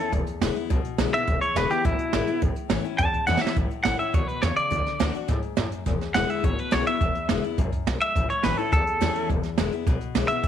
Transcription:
Already playing: E4 A4
0.00 C#4
0.12 E1 E2, kick, closed hi-hat
0.26 muted upright bass stroke, closed hi-hat
0.41 E1 D3 G#3 B3 E4, snare, closed hi-hat
0.55 B3 E4, closed hi-hat
0.70 B1 B2, kick, closed hi-hat
0.85 closed hi-hat
0.98 B1 D3 G#3 B3 E4, snare, closed hi-hat
1.13 B3 E4 E5, closed hi-hat
1.27 E1 E2, kick, closed hi-hat
1.41 C#5, muted upright bass stroke, closed hi-hat
1.55 E1 D3 G#3 B3 E4 B4, snare, closed hi-hat
1.70 B3 E4 G4, muted upright bass stroke, closed hi-hat
1.84 A1 B2 E4, kick, closed hi-hat
1.99 muted upright bass stroke, closed hi-hat
2.13 G#1 D3 G#3 B3 E4, snare, closed hi-hat
2.27 B3 E4, muted upright bass stroke, closed hi-hat
2.42 A1 A2, kick, closed hi-hat
2.56 muted upright bass stroke, closed hi-hat
2.70 A1 E3 A3 C#4 E4, snare, closed hi-hat
2.84 C#4 E4, muted upright bass stroke, closed hi-hat
2.98 E2 A5, kick, closed hi-hat
3.14 muted upright bass stroke, kick, closed hi-hat
3.27 E2 E3 A3 C#4 E4 F#5, snare
3.37 E5, snare
3.42 C#4 E4, muted upright bass stroke
3.47 snare
3.56 A1 A2, kick, closed hi-hat
3.71 muted upright bass stroke, closed hi-hat
3.84 A1 E3 A3 C#4 E4 F#5, snare, closed hi-hat
3.99 C#4 E4 E5, muted upright bass stroke, closed hi-hat
4.14 D2 B2 C#5, kick, closed hi-hat
4.28 B4, muted upright bass stroke, closed hi-hat
4.42 E2 C#3 C#5, snare, closed hi-hat
4.57 D5, muted upright bass stroke, closed hi-hat
4.71 D2 D3, kick, closed hi-hat
4.86 muted upright bass stroke, snare, closed hi-hat
5.00 D2 D3 A3 D4 F#4, snare, closed hi-hat
5.14 D4 F#4, muted upright bass stroke, closed hi-hat
5.28 G#2 A2, kick, snare, closed hi-hat
5.42 muted upright bass stroke, closed hi-hat
5.57 F#2 A2, snare, closed hi-hat
5.72 muted upright bass stroke, closed hi-hat
5.86 E1 E2, kick, snare, closed hi-hat
6.01 muted upright bass stroke, snare, closed hi-hat
6.14 E1 D3 G#3 B3 E4 F#5, snare, closed hi-hat
6.29 E5, muted upright bass stroke, closed hi-hat
6.43 A1 B2 C#5, kick, closed hi-hat
6.58 B4, closed hi-hat
6.71 B1 D3 G#3 B3 E4 C#5, snare, closed hi-hat
6.87 B3 E4 E5, closed hi-hat
7.01 E1 E2, kick, closed hi-hat
7.15 muted upright bass stroke, closed hi-hat
7.29 E1 D3 G#3 B3 E4, snare, closed hi-hat
7.44 B3 E4, closed hi-hat
7.58 B1 F#2, kick, closed hi-hat
7.72 kick, closed hi-hat
7.86 B1 G#2, snare, closed hi-hat
8.01 E5, muted upright bass stroke, closed hi-hat
8.15 A1 A2, kick, closed hi-hat
8.30 C#5, muted upright bass stroke, closed hi-hat
8.43 A1 E3 A3 C#4 E4 B4, snare, closed hi-hat
8.57 C#4 E4 A4, muted upright bass stroke, closed hi-hat
8.72 D2 E2 A4, kick, closed hi-hat
8.87 closed hi-hat
9.01 E2 E3 A3 C#4 E4, snare, closed hi-hat
9.15 muted upright bass stroke, closed hi-hat
9.29 E1 E2, kick, closed hi-hat
9.43 muted upright bass stroke, snare, closed hi-hat
9.58 E1 D3 G#3 B3 E4, snare, closed hi-hat
9.72 B3 E4, muted upright bass stroke, closed hi-hat
9.87 B1 B2, kick, snare, closed hi-hat
10.01 muted upright bass stroke, closed hi-hat
10.15 B1 D3 G#3 B3 E4, snare, closed hi-hat
10.28 B3 E4 E5, closed hi-hat
10.44 E1 E2, kick, closed hi-hat

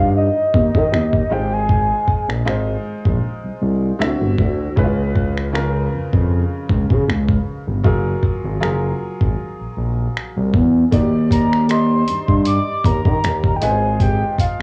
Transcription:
Already playing: G2 D#3 D#4 G4 D5 D#5 F5
0.17 D#5
0.54 D#2, kick
0.75 D#3, kick
0.92 D#2, finger snap
1.13 kick
1.30 G#1 G#3 D#4 F4 C5 G5
1.53 G#5
1.69 kick
2.08 kick
2.28 A#1, finger snap
2.45 G#1 G#3 D#4 F4 C5, finger snap
3.06 A#1, kick
3.44 C2
3.62 C2
3.99 D2 D3 C4 E4 E5, finger snap
4.07 F#4
4.21 G1
4.38 D2, kick
4.76 C#2 C#3 C#4 E4 B4, kick
4.84 F4
5.15 kick
5.37 finger snap
5.53 C#3 C#4 F4 A#4, finger snap
5.93 F2
6.13 F2, kick
6.69 C#2, kick
6.90 C#3, kick
7.08 C#2, finger snap
7.28 kick
7.67 G1
7.84 F#1 F#3 F4 G#4 A#4, kick
8.23 kick
8.44 G#1
8.60 F#1 F#3 F4 G#4 A#4, finger snap
9.21 G#1, kick
9.60 A#1
9.77 A#1
10.17 finger snap
10.37 C2
10.54 E2, kick
10.91 D#2 D#3 D#4 F#4 D5, kick, closed hi-hat
10.99 G4
11.31 A#5, kick, closed hi-hat
11.53 finger snap
11.68 D#3 D#4 G4 D#5 C6, finger snap, closed hi-hat
12.08 G2, closed hi-hat
12.29 G2, kick
12.46 D6, closed hi-hat
12.85 D#2 A#5, kick, closed hi-hat
13.05 D#3, kick
13.24 D#2, finger snap, closed hi-hat
13.44 kick
13.56 G5
13.61 G#1 G#3 D#4 F4 B4 G#5, closed hi-hat
13.70 C5
14.00 G5, kick, closed hi-hat
14.38 F5, kick, closed hi-hat

